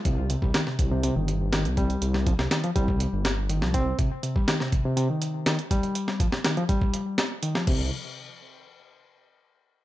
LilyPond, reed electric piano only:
\new Staff \with { instrumentName = "Reed electric piano" } { \clef bass \time 4/4 \key c \minor \tempo 4 = 122 c16 r16 c16 g16 ees16 c8 c16 c16 ees8. ees16 r16 g8~ | g8 f16 r16 ees16 f16 g4 r8 ees16 f16 c'8 | c16 r16 c16 g16 ees16 c8 c16 c16 ees8. ees16 r16 g8~ | g8 f16 r16 ees16 f16 g4 r8 ees16 f16 c8 |
r1 | }